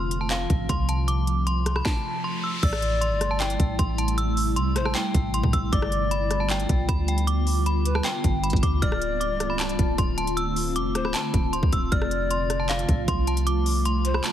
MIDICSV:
0, 0, Header, 1, 7, 480
1, 0, Start_track
1, 0, Key_signature, 0, "minor"
1, 0, Tempo, 387097
1, 1339, Time_signature, 4, 2, 24, 8
1, 17761, End_track
2, 0, Start_track
2, 0, Title_t, "Synth bell"
2, 0, Program_c, 0, 98
2, 0, Note_on_c, 0, 84, 85
2, 239, Note_off_c, 0, 84, 0
2, 258, Note_on_c, 0, 81, 75
2, 353, Note_off_c, 0, 81, 0
2, 380, Note_on_c, 0, 77, 77
2, 831, Note_off_c, 0, 77, 0
2, 862, Note_on_c, 0, 84, 83
2, 1050, Note_off_c, 0, 84, 0
2, 1101, Note_on_c, 0, 81, 80
2, 1289, Note_off_c, 0, 81, 0
2, 1337, Note_on_c, 0, 86, 91
2, 1789, Note_off_c, 0, 86, 0
2, 1819, Note_on_c, 0, 84, 84
2, 2158, Note_off_c, 0, 84, 0
2, 2182, Note_on_c, 0, 83, 82
2, 2276, Note_off_c, 0, 83, 0
2, 2296, Note_on_c, 0, 81, 96
2, 2749, Note_off_c, 0, 81, 0
2, 2780, Note_on_c, 0, 84, 84
2, 2969, Note_off_c, 0, 84, 0
2, 3021, Note_on_c, 0, 88, 80
2, 3209, Note_off_c, 0, 88, 0
2, 3262, Note_on_c, 0, 88, 112
2, 3712, Note_off_c, 0, 88, 0
2, 3735, Note_on_c, 0, 84, 84
2, 4076, Note_off_c, 0, 84, 0
2, 4101, Note_on_c, 0, 81, 85
2, 4195, Note_off_c, 0, 81, 0
2, 4220, Note_on_c, 0, 79, 83
2, 4671, Note_off_c, 0, 79, 0
2, 4698, Note_on_c, 0, 84, 87
2, 4887, Note_off_c, 0, 84, 0
2, 4940, Note_on_c, 0, 81, 76
2, 5129, Note_off_c, 0, 81, 0
2, 5179, Note_on_c, 0, 88, 106
2, 5631, Note_off_c, 0, 88, 0
2, 5658, Note_on_c, 0, 84, 87
2, 5997, Note_off_c, 0, 84, 0
2, 6022, Note_on_c, 0, 81, 86
2, 6115, Note_off_c, 0, 81, 0
2, 6138, Note_on_c, 0, 79, 98
2, 6590, Note_off_c, 0, 79, 0
2, 6622, Note_on_c, 0, 84, 79
2, 6810, Note_off_c, 0, 84, 0
2, 6859, Note_on_c, 0, 88, 85
2, 7048, Note_off_c, 0, 88, 0
2, 7100, Note_on_c, 0, 86, 114
2, 7551, Note_off_c, 0, 86, 0
2, 7579, Note_on_c, 0, 83, 90
2, 7917, Note_off_c, 0, 83, 0
2, 7938, Note_on_c, 0, 81, 72
2, 8033, Note_off_c, 0, 81, 0
2, 8069, Note_on_c, 0, 79, 81
2, 8516, Note_off_c, 0, 79, 0
2, 8539, Note_on_c, 0, 83, 89
2, 8728, Note_off_c, 0, 83, 0
2, 8784, Note_on_c, 0, 79, 77
2, 8971, Note_off_c, 0, 79, 0
2, 9018, Note_on_c, 0, 86, 104
2, 9470, Note_off_c, 0, 86, 0
2, 9502, Note_on_c, 0, 83, 88
2, 9839, Note_off_c, 0, 83, 0
2, 9859, Note_on_c, 0, 81, 81
2, 9953, Note_off_c, 0, 81, 0
2, 9978, Note_on_c, 0, 79, 100
2, 10430, Note_off_c, 0, 79, 0
2, 10459, Note_on_c, 0, 83, 82
2, 10648, Note_off_c, 0, 83, 0
2, 10699, Note_on_c, 0, 86, 86
2, 10888, Note_off_c, 0, 86, 0
2, 10938, Note_on_c, 0, 89, 106
2, 11390, Note_off_c, 0, 89, 0
2, 11414, Note_on_c, 0, 86, 77
2, 11755, Note_off_c, 0, 86, 0
2, 11777, Note_on_c, 0, 83, 79
2, 11872, Note_off_c, 0, 83, 0
2, 11900, Note_on_c, 0, 81, 77
2, 12351, Note_off_c, 0, 81, 0
2, 12380, Note_on_c, 0, 84, 88
2, 12569, Note_off_c, 0, 84, 0
2, 12619, Note_on_c, 0, 81, 82
2, 12808, Note_off_c, 0, 81, 0
2, 12856, Note_on_c, 0, 88, 105
2, 13309, Note_off_c, 0, 88, 0
2, 13340, Note_on_c, 0, 86, 88
2, 13678, Note_off_c, 0, 86, 0
2, 13701, Note_on_c, 0, 83, 80
2, 13794, Note_off_c, 0, 83, 0
2, 13814, Note_on_c, 0, 81, 96
2, 14268, Note_off_c, 0, 81, 0
2, 14296, Note_on_c, 0, 84, 82
2, 14486, Note_off_c, 0, 84, 0
2, 14541, Note_on_c, 0, 88, 85
2, 14730, Note_off_c, 0, 88, 0
2, 14779, Note_on_c, 0, 89, 107
2, 15230, Note_off_c, 0, 89, 0
2, 15261, Note_on_c, 0, 84, 85
2, 15599, Note_off_c, 0, 84, 0
2, 15619, Note_on_c, 0, 81, 75
2, 15714, Note_off_c, 0, 81, 0
2, 15741, Note_on_c, 0, 77, 80
2, 16191, Note_off_c, 0, 77, 0
2, 16221, Note_on_c, 0, 84, 86
2, 16409, Note_off_c, 0, 84, 0
2, 16462, Note_on_c, 0, 81, 80
2, 16650, Note_off_c, 0, 81, 0
2, 16698, Note_on_c, 0, 86, 96
2, 17150, Note_off_c, 0, 86, 0
2, 17180, Note_on_c, 0, 84, 90
2, 17518, Note_off_c, 0, 84, 0
2, 17542, Note_on_c, 0, 83, 80
2, 17635, Note_off_c, 0, 83, 0
2, 17656, Note_on_c, 0, 81, 97
2, 17761, Note_off_c, 0, 81, 0
2, 17761, End_track
3, 0, Start_track
3, 0, Title_t, "Pan flute"
3, 0, Program_c, 1, 75
3, 3259, Note_on_c, 1, 74, 127
3, 4650, Note_off_c, 1, 74, 0
3, 5899, Note_on_c, 1, 72, 91
3, 6127, Note_off_c, 1, 72, 0
3, 7098, Note_on_c, 1, 74, 114
3, 8489, Note_off_c, 1, 74, 0
3, 9739, Note_on_c, 1, 71, 76
3, 9967, Note_off_c, 1, 71, 0
3, 10940, Note_on_c, 1, 74, 124
3, 12330, Note_off_c, 1, 74, 0
3, 13579, Note_on_c, 1, 72, 85
3, 13807, Note_off_c, 1, 72, 0
3, 14779, Note_on_c, 1, 74, 115
3, 16170, Note_off_c, 1, 74, 0
3, 17419, Note_on_c, 1, 72, 78
3, 17647, Note_off_c, 1, 72, 0
3, 17761, End_track
4, 0, Start_track
4, 0, Title_t, "Ambient pad"
4, 0, Program_c, 2, 92
4, 0, Note_on_c, 2, 48, 82
4, 0, Note_on_c, 2, 53, 75
4, 0, Note_on_c, 2, 57, 76
4, 0, Note_on_c, 2, 65, 93
4, 2249, Note_off_c, 2, 57, 0
4, 2250, Note_off_c, 2, 65, 0
4, 2270, Note_off_c, 2, 48, 0
4, 2270, Note_off_c, 2, 53, 0
4, 3258, Note_on_c, 2, 48, 85
4, 3258, Note_on_c, 2, 64, 91
4, 3259, Note_on_c, 2, 55, 74
4, 3259, Note_on_c, 2, 57, 77
4, 7060, Note_off_c, 2, 48, 0
4, 7061, Note_off_c, 2, 55, 0
4, 7061, Note_off_c, 2, 57, 0
4, 7061, Note_off_c, 2, 64, 0
4, 7100, Note_on_c, 2, 50, 83
4, 7100, Note_on_c, 2, 55, 75
4, 7100, Note_on_c, 2, 59, 74
4, 7101, Note_on_c, 2, 65, 91
4, 10901, Note_off_c, 2, 55, 0
4, 10902, Note_off_c, 2, 59, 0
4, 10939, Note_on_c, 2, 60, 75
4, 10940, Note_on_c, 2, 57, 73
4, 14730, Note_off_c, 2, 50, 0
4, 14730, Note_off_c, 2, 65, 0
4, 14741, Note_off_c, 2, 57, 0
4, 14741, Note_off_c, 2, 60, 0
4, 14780, Note_on_c, 2, 48, 83
4, 14780, Note_on_c, 2, 65, 91
4, 14781, Note_on_c, 2, 53, 75
4, 14781, Note_on_c, 2, 57, 76
4, 17761, Note_off_c, 2, 48, 0
4, 17761, Note_off_c, 2, 53, 0
4, 17761, Note_off_c, 2, 57, 0
4, 17761, Note_off_c, 2, 65, 0
4, 17761, End_track
5, 0, Start_track
5, 0, Title_t, "808-style bass"
5, 0, Program_c, 3, 38
5, 0, Note_on_c, 3, 29, 112
5, 571, Note_off_c, 3, 29, 0
5, 619, Note_on_c, 3, 33, 101
5, 850, Note_off_c, 3, 33, 0
5, 858, Note_on_c, 3, 36, 105
5, 2249, Note_off_c, 3, 36, 0
5, 3259, Note_on_c, 3, 33, 109
5, 3859, Note_on_c, 3, 31, 100
5, 3877, Note_off_c, 3, 33, 0
5, 4429, Note_off_c, 3, 31, 0
5, 4459, Note_on_c, 3, 33, 104
5, 4690, Note_off_c, 3, 33, 0
5, 4699, Note_on_c, 3, 33, 107
5, 5659, Note_on_c, 3, 36, 99
5, 5678, Note_off_c, 3, 33, 0
5, 5900, Note_on_c, 3, 33, 97
5, 5918, Note_off_c, 3, 36, 0
5, 6128, Note_off_c, 3, 33, 0
5, 6379, Note_on_c, 3, 33, 102
5, 6725, Note_off_c, 3, 33, 0
5, 6739, Note_on_c, 3, 45, 106
5, 6855, Note_off_c, 3, 45, 0
5, 6860, Note_on_c, 3, 33, 108
5, 7090, Note_off_c, 3, 33, 0
5, 7100, Note_on_c, 3, 31, 117
5, 8252, Note_off_c, 3, 31, 0
5, 8300, Note_on_c, 3, 35, 104
5, 8530, Note_off_c, 3, 35, 0
5, 8539, Note_on_c, 3, 38, 107
5, 9930, Note_off_c, 3, 38, 0
5, 10220, Note_on_c, 3, 31, 101
5, 10565, Note_off_c, 3, 31, 0
5, 10579, Note_on_c, 3, 31, 104
5, 10694, Note_off_c, 3, 31, 0
5, 10700, Note_on_c, 3, 38, 103
5, 10930, Note_off_c, 3, 38, 0
5, 10940, Note_on_c, 3, 26, 107
5, 11540, Note_on_c, 3, 24, 104
5, 11558, Note_off_c, 3, 26, 0
5, 12110, Note_off_c, 3, 24, 0
5, 12139, Note_on_c, 3, 26, 102
5, 12370, Note_off_c, 3, 26, 0
5, 12379, Note_on_c, 3, 26, 110
5, 13339, Note_on_c, 3, 29, 96
5, 13357, Note_off_c, 3, 26, 0
5, 13579, Note_on_c, 3, 26, 98
5, 13598, Note_off_c, 3, 29, 0
5, 13807, Note_off_c, 3, 26, 0
5, 14059, Note_on_c, 3, 26, 104
5, 14405, Note_off_c, 3, 26, 0
5, 14418, Note_on_c, 3, 38, 103
5, 14534, Note_off_c, 3, 38, 0
5, 14539, Note_on_c, 3, 26, 106
5, 14770, Note_off_c, 3, 26, 0
5, 14779, Note_on_c, 3, 29, 117
5, 15931, Note_off_c, 3, 29, 0
5, 15979, Note_on_c, 3, 33, 104
5, 16210, Note_off_c, 3, 33, 0
5, 16218, Note_on_c, 3, 36, 109
5, 17609, Note_off_c, 3, 36, 0
5, 17761, End_track
6, 0, Start_track
6, 0, Title_t, "Riser"
6, 0, Program_c, 4, 103
6, 1339, Note_on_c, 4, 60, 82
6, 3259, Note_off_c, 4, 60, 0
6, 17761, End_track
7, 0, Start_track
7, 0, Title_t, "Drums"
7, 139, Note_on_c, 9, 42, 84
7, 263, Note_off_c, 9, 42, 0
7, 379, Note_on_c, 9, 39, 115
7, 379, Note_on_c, 9, 42, 67
7, 503, Note_off_c, 9, 39, 0
7, 503, Note_off_c, 9, 42, 0
7, 619, Note_on_c, 9, 36, 100
7, 619, Note_on_c, 9, 42, 69
7, 743, Note_off_c, 9, 36, 0
7, 743, Note_off_c, 9, 42, 0
7, 858, Note_on_c, 9, 36, 98
7, 859, Note_on_c, 9, 42, 74
7, 982, Note_off_c, 9, 36, 0
7, 983, Note_off_c, 9, 42, 0
7, 1099, Note_on_c, 9, 42, 84
7, 1223, Note_off_c, 9, 42, 0
7, 1339, Note_on_c, 9, 42, 72
7, 1463, Note_off_c, 9, 42, 0
7, 1579, Note_on_c, 9, 42, 62
7, 1703, Note_off_c, 9, 42, 0
7, 1820, Note_on_c, 9, 42, 68
7, 1944, Note_off_c, 9, 42, 0
7, 2060, Note_on_c, 9, 37, 72
7, 2060, Note_on_c, 9, 42, 77
7, 2179, Note_off_c, 9, 37, 0
7, 2179, Note_on_c, 9, 37, 91
7, 2184, Note_off_c, 9, 42, 0
7, 2299, Note_on_c, 9, 36, 116
7, 2300, Note_on_c, 9, 38, 92
7, 2303, Note_off_c, 9, 37, 0
7, 2423, Note_off_c, 9, 36, 0
7, 2424, Note_off_c, 9, 38, 0
7, 3259, Note_on_c, 9, 36, 111
7, 3260, Note_on_c, 9, 42, 73
7, 3260, Note_on_c, 9, 49, 108
7, 3381, Note_on_c, 9, 37, 104
7, 3383, Note_off_c, 9, 36, 0
7, 3384, Note_off_c, 9, 42, 0
7, 3384, Note_off_c, 9, 49, 0
7, 3500, Note_on_c, 9, 42, 61
7, 3505, Note_off_c, 9, 37, 0
7, 3624, Note_off_c, 9, 42, 0
7, 3740, Note_on_c, 9, 42, 73
7, 3864, Note_off_c, 9, 42, 0
7, 3980, Note_on_c, 9, 37, 70
7, 3980, Note_on_c, 9, 42, 82
7, 4104, Note_off_c, 9, 37, 0
7, 4104, Note_off_c, 9, 42, 0
7, 4219, Note_on_c, 9, 39, 117
7, 4220, Note_on_c, 9, 42, 57
7, 4340, Note_off_c, 9, 42, 0
7, 4340, Note_on_c, 9, 42, 58
7, 4343, Note_off_c, 9, 39, 0
7, 4460, Note_off_c, 9, 42, 0
7, 4460, Note_on_c, 9, 36, 99
7, 4460, Note_on_c, 9, 42, 70
7, 4584, Note_off_c, 9, 36, 0
7, 4584, Note_off_c, 9, 42, 0
7, 4699, Note_on_c, 9, 36, 107
7, 4700, Note_on_c, 9, 42, 74
7, 4823, Note_off_c, 9, 36, 0
7, 4824, Note_off_c, 9, 42, 0
7, 4940, Note_on_c, 9, 42, 76
7, 5060, Note_off_c, 9, 42, 0
7, 5060, Note_on_c, 9, 42, 77
7, 5180, Note_off_c, 9, 42, 0
7, 5180, Note_on_c, 9, 42, 75
7, 5304, Note_off_c, 9, 42, 0
7, 5420, Note_on_c, 9, 46, 65
7, 5544, Note_off_c, 9, 46, 0
7, 5660, Note_on_c, 9, 42, 66
7, 5784, Note_off_c, 9, 42, 0
7, 5900, Note_on_c, 9, 37, 72
7, 5900, Note_on_c, 9, 42, 76
7, 6020, Note_off_c, 9, 37, 0
7, 6020, Note_on_c, 9, 37, 94
7, 6024, Note_off_c, 9, 42, 0
7, 6139, Note_on_c, 9, 39, 114
7, 6140, Note_on_c, 9, 42, 65
7, 6144, Note_off_c, 9, 37, 0
7, 6263, Note_off_c, 9, 39, 0
7, 6264, Note_off_c, 9, 42, 0
7, 6380, Note_on_c, 9, 36, 104
7, 6380, Note_on_c, 9, 42, 77
7, 6504, Note_off_c, 9, 36, 0
7, 6504, Note_off_c, 9, 42, 0
7, 6620, Note_on_c, 9, 42, 76
7, 6739, Note_on_c, 9, 36, 100
7, 6744, Note_off_c, 9, 42, 0
7, 6860, Note_off_c, 9, 36, 0
7, 6860, Note_on_c, 9, 36, 92
7, 6860, Note_on_c, 9, 42, 88
7, 6984, Note_off_c, 9, 36, 0
7, 6984, Note_off_c, 9, 42, 0
7, 7100, Note_on_c, 9, 36, 114
7, 7100, Note_on_c, 9, 42, 75
7, 7221, Note_on_c, 9, 37, 108
7, 7224, Note_off_c, 9, 36, 0
7, 7224, Note_off_c, 9, 42, 0
7, 7340, Note_on_c, 9, 42, 61
7, 7345, Note_off_c, 9, 37, 0
7, 7464, Note_off_c, 9, 42, 0
7, 7579, Note_on_c, 9, 42, 75
7, 7703, Note_off_c, 9, 42, 0
7, 7819, Note_on_c, 9, 42, 82
7, 7820, Note_on_c, 9, 37, 70
7, 7943, Note_off_c, 9, 42, 0
7, 7944, Note_off_c, 9, 37, 0
7, 8059, Note_on_c, 9, 39, 115
7, 8059, Note_on_c, 9, 42, 58
7, 8180, Note_off_c, 9, 42, 0
7, 8180, Note_on_c, 9, 42, 56
7, 8183, Note_off_c, 9, 39, 0
7, 8300, Note_off_c, 9, 42, 0
7, 8300, Note_on_c, 9, 36, 100
7, 8300, Note_on_c, 9, 42, 70
7, 8424, Note_off_c, 9, 36, 0
7, 8424, Note_off_c, 9, 42, 0
7, 8539, Note_on_c, 9, 36, 100
7, 8540, Note_on_c, 9, 42, 73
7, 8663, Note_off_c, 9, 36, 0
7, 8664, Note_off_c, 9, 42, 0
7, 8780, Note_on_c, 9, 42, 74
7, 8900, Note_off_c, 9, 42, 0
7, 8900, Note_on_c, 9, 42, 74
7, 9020, Note_off_c, 9, 42, 0
7, 9020, Note_on_c, 9, 42, 75
7, 9144, Note_off_c, 9, 42, 0
7, 9260, Note_on_c, 9, 46, 65
7, 9384, Note_off_c, 9, 46, 0
7, 9500, Note_on_c, 9, 42, 69
7, 9624, Note_off_c, 9, 42, 0
7, 9740, Note_on_c, 9, 42, 80
7, 9859, Note_on_c, 9, 37, 96
7, 9864, Note_off_c, 9, 42, 0
7, 9979, Note_on_c, 9, 39, 114
7, 9980, Note_on_c, 9, 42, 69
7, 9983, Note_off_c, 9, 37, 0
7, 10103, Note_off_c, 9, 39, 0
7, 10104, Note_off_c, 9, 42, 0
7, 10220, Note_on_c, 9, 36, 96
7, 10220, Note_on_c, 9, 42, 76
7, 10344, Note_off_c, 9, 36, 0
7, 10344, Note_off_c, 9, 42, 0
7, 10460, Note_on_c, 9, 42, 64
7, 10540, Note_off_c, 9, 42, 0
7, 10540, Note_on_c, 9, 42, 63
7, 10579, Note_on_c, 9, 36, 99
7, 10619, Note_off_c, 9, 42, 0
7, 10619, Note_on_c, 9, 42, 60
7, 10700, Note_off_c, 9, 36, 0
7, 10700, Note_off_c, 9, 42, 0
7, 10700, Note_on_c, 9, 36, 90
7, 10700, Note_on_c, 9, 42, 86
7, 10824, Note_off_c, 9, 36, 0
7, 10824, Note_off_c, 9, 42, 0
7, 10940, Note_on_c, 9, 36, 119
7, 10940, Note_on_c, 9, 42, 73
7, 11061, Note_on_c, 9, 37, 103
7, 11064, Note_off_c, 9, 36, 0
7, 11064, Note_off_c, 9, 42, 0
7, 11180, Note_on_c, 9, 42, 61
7, 11185, Note_off_c, 9, 37, 0
7, 11304, Note_off_c, 9, 42, 0
7, 11420, Note_on_c, 9, 42, 71
7, 11544, Note_off_c, 9, 42, 0
7, 11659, Note_on_c, 9, 37, 75
7, 11659, Note_on_c, 9, 42, 87
7, 11783, Note_off_c, 9, 37, 0
7, 11783, Note_off_c, 9, 42, 0
7, 11899, Note_on_c, 9, 39, 113
7, 11899, Note_on_c, 9, 42, 57
7, 12019, Note_off_c, 9, 42, 0
7, 12019, Note_on_c, 9, 42, 56
7, 12023, Note_off_c, 9, 39, 0
7, 12139, Note_off_c, 9, 42, 0
7, 12139, Note_on_c, 9, 42, 71
7, 12140, Note_on_c, 9, 36, 97
7, 12263, Note_off_c, 9, 42, 0
7, 12264, Note_off_c, 9, 36, 0
7, 12379, Note_on_c, 9, 36, 104
7, 12380, Note_on_c, 9, 42, 74
7, 12503, Note_off_c, 9, 36, 0
7, 12504, Note_off_c, 9, 42, 0
7, 12619, Note_on_c, 9, 42, 74
7, 12740, Note_off_c, 9, 42, 0
7, 12740, Note_on_c, 9, 42, 75
7, 12860, Note_off_c, 9, 42, 0
7, 12860, Note_on_c, 9, 42, 76
7, 12984, Note_off_c, 9, 42, 0
7, 13099, Note_on_c, 9, 46, 63
7, 13223, Note_off_c, 9, 46, 0
7, 13340, Note_on_c, 9, 42, 67
7, 13464, Note_off_c, 9, 42, 0
7, 13580, Note_on_c, 9, 37, 73
7, 13580, Note_on_c, 9, 42, 77
7, 13699, Note_off_c, 9, 37, 0
7, 13699, Note_on_c, 9, 37, 95
7, 13704, Note_off_c, 9, 42, 0
7, 13819, Note_on_c, 9, 39, 116
7, 13820, Note_on_c, 9, 42, 69
7, 13823, Note_off_c, 9, 37, 0
7, 13943, Note_off_c, 9, 39, 0
7, 13944, Note_off_c, 9, 42, 0
7, 14059, Note_on_c, 9, 36, 100
7, 14059, Note_on_c, 9, 42, 74
7, 14183, Note_off_c, 9, 36, 0
7, 14183, Note_off_c, 9, 42, 0
7, 14299, Note_on_c, 9, 42, 75
7, 14418, Note_on_c, 9, 36, 101
7, 14423, Note_off_c, 9, 42, 0
7, 14539, Note_off_c, 9, 36, 0
7, 14539, Note_on_c, 9, 36, 87
7, 14539, Note_on_c, 9, 42, 85
7, 14663, Note_off_c, 9, 36, 0
7, 14663, Note_off_c, 9, 42, 0
7, 14779, Note_on_c, 9, 36, 114
7, 14779, Note_on_c, 9, 42, 75
7, 14900, Note_on_c, 9, 37, 104
7, 14903, Note_off_c, 9, 36, 0
7, 14903, Note_off_c, 9, 42, 0
7, 15019, Note_on_c, 9, 42, 60
7, 15024, Note_off_c, 9, 37, 0
7, 15143, Note_off_c, 9, 42, 0
7, 15259, Note_on_c, 9, 42, 76
7, 15383, Note_off_c, 9, 42, 0
7, 15499, Note_on_c, 9, 42, 83
7, 15500, Note_on_c, 9, 37, 73
7, 15623, Note_off_c, 9, 42, 0
7, 15624, Note_off_c, 9, 37, 0
7, 15739, Note_on_c, 9, 39, 113
7, 15739, Note_on_c, 9, 42, 58
7, 15859, Note_off_c, 9, 42, 0
7, 15859, Note_on_c, 9, 42, 55
7, 15863, Note_off_c, 9, 39, 0
7, 15979, Note_off_c, 9, 42, 0
7, 15979, Note_on_c, 9, 36, 102
7, 15979, Note_on_c, 9, 42, 68
7, 16103, Note_off_c, 9, 36, 0
7, 16103, Note_off_c, 9, 42, 0
7, 16218, Note_on_c, 9, 36, 102
7, 16219, Note_on_c, 9, 42, 75
7, 16342, Note_off_c, 9, 36, 0
7, 16343, Note_off_c, 9, 42, 0
7, 16459, Note_on_c, 9, 42, 74
7, 16579, Note_off_c, 9, 42, 0
7, 16579, Note_on_c, 9, 42, 74
7, 16699, Note_off_c, 9, 42, 0
7, 16699, Note_on_c, 9, 42, 76
7, 16823, Note_off_c, 9, 42, 0
7, 16939, Note_on_c, 9, 46, 64
7, 17063, Note_off_c, 9, 46, 0
7, 17179, Note_on_c, 9, 42, 68
7, 17303, Note_off_c, 9, 42, 0
7, 17419, Note_on_c, 9, 42, 79
7, 17538, Note_on_c, 9, 37, 94
7, 17543, Note_off_c, 9, 42, 0
7, 17659, Note_on_c, 9, 39, 115
7, 17659, Note_on_c, 9, 42, 67
7, 17662, Note_off_c, 9, 37, 0
7, 17761, Note_off_c, 9, 39, 0
7, 17761, Note_off_c, 9, 42, 0
7, 17761, End_track
0, 0, End_of_file